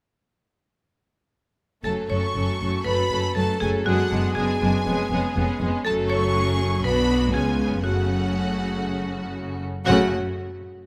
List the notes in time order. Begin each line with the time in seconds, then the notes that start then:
1.84 F#1 F#2 F#3 A3 C#4 A4 A5
2.09 F#1 F#2 F#3 A3 C#4 A4 C#5 C#6
2.34 F#1 F#2 F#3 A3 C#4 A4
2.60 F#1 F#2 F#3 A3 C#4 A4
2.85 F#1 F#2 F#3 A3 C#4 A4 B4 B5
3.10 F#1 F#2 F#3 A3 C#4 A4
3.35 F#1 F#2 F#3 A3 C#4 A4 A5
3.60 F#1 F#2 F#3 A3 C#4 G#4 A4 G#5
3.85 F#1 F#2 G#3 B3 D4 F#4 G#4 F#5
4.10 F#1 F#2 G#3 B3 D4 G#4
4.35 F#1 F#2 G#3 B3 D4 G#4 G#5
4.61 F#1 F#2 G#3 B3 D4 G#4
4.86 F1 F2 G#3 B3 C#4 G#4
5.11 F1 F2 G#3 B3 C#4 G#4
5.36 F1 F2 G#3 B3 C#4 G#4
5.61 F1 F2 G#3 B3 C#4 G#4
5.85 F#1 F#2 F#3 A3 C#4 A4 A5
6.10 C#5 C#6
6.35 G#4
6.84 B1 B2 F#3 B3 D4 F#4 B4 B5
7.33 C#2 C#3 B3 C#4 F4 G#4 G#5
7.84 F#1 F#2 C#3 A3 C#4 F#4 F#5
9.85 F#1 F#2 C#3 A3 C#4 F#4 F#5